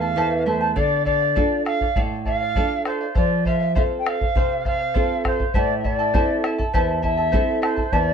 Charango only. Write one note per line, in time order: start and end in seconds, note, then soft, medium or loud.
0.01 0.16 E4 soft
0.01 0.16 A4 soft
0.01 0.16 A5 soft
0.17 0.45 E4 medium
0.17 0.46 A4 medium
0.17 0.46 C5 medium
0.17 0.45 E5 medium
0.17 0.46 A5 medium
0.46 0.61 E4 medium
0.46 0.60 A4 medium
0.46 0.61 E5 medium
0.46 0.60 A5 medium
0.61 0.75 E4 soft
0.61 0.74 A4 soft
0.61 0.76 A5 soft
0.76 1.04 A4 medium
0.76 1.05 D5 medium
0.76 1.05 F5 medium
1.05 1.21 A4 medium
1.05 1.21 D5 medium
1.05 1.19 F5 medium
1.20 1.35 D5 soft
1.20 1.35 F5 soft
1.36 1.64 A4 medium
1.36 1.65 D5 medium
1.36 1.65 F5 medium
1.65 1.81 A4 medium
1.65 1.81 D5 soft
1.65 1.80 F5 medium
1.81 1.95 D5 soft
1.81 1.96 F5 soft
1.96 2.24 A4 medium
1.96 2.25 D5 medium
1.96 2.26 F5 medium
2.26 2.41 A4 soft
2.26 2.41 D5 medium
2.26 2.40 F5 medium
2.41 2.55 D5 soft
2.41 2.56 F5 soft
2.56 2.84 A4 medium
2.56 2.85 D5 medium
2.56 2.85 F5 medium
2.85 3.01 A4 medium
2.85 3.01 D5 medium
2.85 2.99 F5 medium
3.01 3.14 D5 soft
3.01 3.14 F5 soft
3.15 3.44 A4 medium
3.15 3.45 C5 medium
3.15 3.46 F5 medium
3.45 3.61 A4 medium
3.45 3.59 C5 medium
3.45 3.58 F5 medium
3.60 3.74 C5 soft
3.60 3.75 F5 soft
3.75 4.05 A4 medium
3.75 4.05 C5 medium
3.75 4.06 F5 medium
4.06 4.21 A4 soft
4.06 4.21 C5 medium
4.06 4.20 F5 medium
4.21 4.35 C5 soft
4.21 4.36 F5 soft
4.35 4.64 A4 medium
4.35 4.65 C5 medium
4.35 4.65 F5 medium
4.65 4.80 A4 medium
4.65 4.79 C5 medium
4.65 4.78 F5 medium
4.79 4.93 C5 soft
4.79 4.94 F5 soft
4.94 5.23 A4 medium
4.94 5.24 C5 medium
4.94 5.24 F5 medium
5.24 5.40 A4 medium
5.24 5.39 C5 medium
5.24 5.38 F5 medium
5.39 5.53 C5 soft
5.39 5.54 F5 soft
5.54 5.83 E4 medium
5.54 5.83 A4 medium
5.54 5.84 C5 medium
5.54 5.83 E5 medium
5.54 5.84 A5 medium
5.84 5.99 E4 medium
5.84 5.98 A4 soft
5.84 5.99 E5 soft
5.84 5.97 A5 medium
5.99 6.13 E4 soft
5.99 6.13 A4 soft
5.99 6.14 A5 soft
6.14 6.43 E4 medium
6.14 6.43 A4 medium
6.14 6.44 C5 medium
6.14 6.43 E5 medium
6.14 6.44 A5 medium
6.44 6.58 E4 soft
6.44 6.58 A4 medium
6.44 6.59 E5 medium
6.44 6.57 A5 medium
6.58 6.73 E4 soft
6.58 6.73 A4 medium
6.58 6.74 A5 medium
6.74 7.02 E4 medium
6.74 7.02 A4 medium
6.74 7.03 C5 medium
6.74 7.01 E5 medium
6.74 7.03 A5 medium
7.02 7.17 E4 medium
7.02 7.16 A4 medium
7.02 7.18 E5 medium
7.02 7.16 A5 medium
7.17 7.32 E4 soft
7.17 7.32 A4 soft
7.17 7.32 A5 soft
7.32 7.61 E4 medium
7.32 7.61 A4 medium
7.32 7.62 C5 medium
7.32 7.60 E5 medium
7.32 7.62 A5 medium
7.62 7.77 E4 medium
7.62 7.76 A4 medium
7.62 7.77 E5 medium
7.62 7.75 A5 medium
7.76 7.91 E4 soft
7.76 7.92 A4 soft
7.76 7.92 A5 soft
7.92 8.14 E4 medium
7.92 8.14 A4 medium
7.92 8.14 C5 medium
7.92 8.14 E5 medium
7.92 8.14 A5 medium